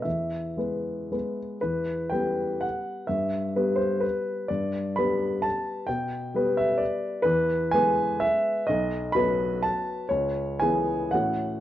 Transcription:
X:1
M:3/4
L:1/8
Q:1/4=126
K:E
V:1 name="Grand piano"
e4- e z | [K:Em] B2 g2 f2 | e3 c B2 | d2 b2 a2 |
g3 e d2 | [K:E] B2 g2 e2 | d2 b2 a2 | c2 g2 f2 |]
V:2 name="Grand piano"
E,,2 [G,B,B]2 [G,B,B]2 | [K:Em] E,,2 [G,B,B]4 | G,,2 [G,B,B]4 | G,,2 [G,B,B]4 |
B,,2 [G,B,B]4 | [K:E] E,,2 [G,B,B]4 | B,,,2 [F,B,B]4 | C,,2 [E,B,G]2 [A,,E,CF]2 |]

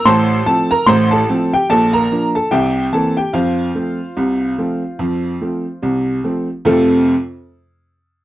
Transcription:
X:1
M:2/4
L:1/16
Q:"Swing 16ths" 1/4=73
K:F
V:1 name="Upright piano"
[cac']2 [Aa] [Bb] [cc'] [Aa]2 [Gg] | [Aa] [Bb]2 [Aa] [Geg]2 [Aa] [Gg] | [Fcf]8- | [Fcf]4 z4 |
[F,,C,A,CFA]2 z6 |]
V:2 name="Upright piano" clef=bass
[A,,,A,,]2 [F,A,C]2 [A,,,A,,]2 [F,A,C]2 | [B,,,B,,]2 [F,B,D]2 [C,,C,]2 [E,B,C]2 | [F,,F,]2 [F,A,C]2 [C,,C,]2 [F,A,C]2 | [F,,F,]2 [F,A,C]2 [C,,C,]2 [F,A,C]2 |
z8 |]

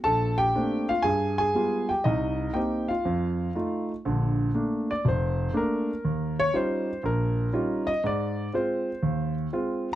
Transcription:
X:1
M:4/4
L:1/8
Q:"Swing" 1/4=120
K:Bb
V:1 name="Grand piano"
[Aa] [Gg]2 [Ff] [_A_a] [Aa]2 [Gg] | [Ee]2 [Gg] [Ff]4 z | z3 d c2 B2- | B _d c2 B3 e |
d2 c3 z3 |]
V:2 name="Grand piano"
B,,,2 [A,B,CD] z G,,2 [G,_A,=B,F] z | C,,2 [B,CE] z F,,2 [A,EF] z | [B,,,D,]2 [A,B,D] z F,,,2 [A,B,D] z | E,,2 [G,_DEF] z B,,,2 [G,DEF] z |
_A,,2 [_A,CF] z E,,2 [A,CF] z |]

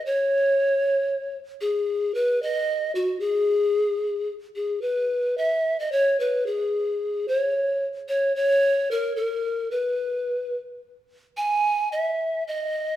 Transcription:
X:1
M:3/4
L:1/16
Q:1/4=111
K:G#phr
V:1 name="Pan flute"
c8- c2 z2 | G4 B2 d4 F2 | G8 z2 G2 | B4 e3 d c2 B2 |
G6 c4 z2 | c2 c4 ^A2 A4 | B6 z6 | g4 e4 d4 |]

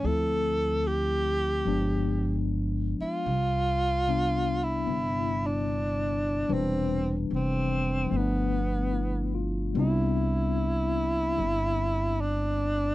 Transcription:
X:1
M:4/4
L:1/16
Q:"Swing" 1/4=74
K:C
V:1 name="Tenor saxophone"
A4 G8 z2 F2- | F6 E4 D6 | C2 z2 C4 B,6 z2 | E12 D4 |]
V:2 name="Tine electric piano"
z16 | z16 | z12 E2 F2- | F z12 z3 |]
V:3 name="Tine electric piano"
[F,A,CE]8 [F,_A,B,D]8 | z4 [C,G,B,D]4 [B,E]8 | [E,G,DB]8 [F,A,B,D]8 | [G,B,CDE]16 |]
V:4 name="Upright bass" clef=bass
D,,8 G,,,6 z2 | C,,8 G,,,8 | E,,,4 F,,,4 G,,,8 | C,,8 G,,,8 |]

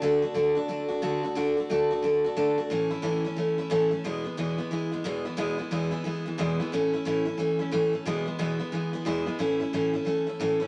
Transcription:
X:1
M:4/4
L:1/8
Q:"Swing" 1/4=180
K:A
V:1 name="Steel-string acoustic guitar"
[D,A,DF] [A,DF] [D,A,DF] [A,DF] [D,A,DF] [A,DF] [D,A,DF] [A,DF] | [D,A,DF] [A,DF] [D,A,DF] [A,DF] [D,A,DF] [A,DF] [D,A,DF] [A,DF] | [A,,E,A,CE] [A,CE] [A,,E,A,CE] [A,CE] [E,A,CE] [A,CE] [A,,E,A,CE] [A,CE] | [E,,B,,E,G,B,E] [E,G,B,E] [E,,B,,E,G,B,E] [E,G,B,E] [E,G,B,E] [E,G,B,E] [E,,B,,E,G,B,E] [E,G,B,E] |
[E,,B,,E,G,B,E] [E,G,B,E] [E,,B,,E,G,B,E] [E,G,B,E] [E,G,B,E] [E,G,B,E] [E,,B,,E,G,B,E] [E,G,B,E] | [A,,E,A,CE] [A,CE] [A,,E,A,CE] [A,CE] [E,A,CE] [A,CE] [A,,E,A,CE] [A,CE] | [E,,B,,E,G,B,E] [E,G,B,E] [E,,B,,E,G,B,E] [E,G,B,E] [E,G,B,E] [E,G,B,E] [E,,B,,E,G,B,E] [E,G,B,E] | [A,,E,A,CE] [A,CE] [A,,E,A,CE] [A,CE] [E,A,CE] [A,CE] [A,,E,A,CE] [A,CE] |]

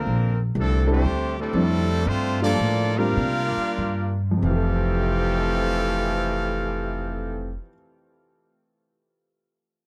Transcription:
X:1
M:4/4
L:1/8
Q:"Swing" 1/4=88
K:F
V:1 name="Trumpet section"
[CDB] z [CDA] [A,DGc]2 [G,CDA]3 | [A,DFc] [B,FAd]2 [DGBf]4 z | [CGAf]8- | [CGAf]8 |]
V:2 name="Grand piano"
z3 [G,CDEA] z2 [G,CDEA] z | z [G,B,DFA] z [G,CDFB] z4 | [F,,C,E,GA]8- | [F,,C,E,GA]8 |]
V:3 name="Trombone section" clef=bass
[D,F,B,] z [D,F,A,] [G,A,C]2 [A,,C,A,]3 | C [F,B,D]2 [G,B,F]4 z | [F,,C,E,A,]8- | [F,,C,E,A,]8 |]
V:4 name="Upright bass" clef=bass
B,,,2 C,,2 D,,2 F,,2 | G,,2 A,,2 C, z G,,2 | F,,,8- | F,,,8 |]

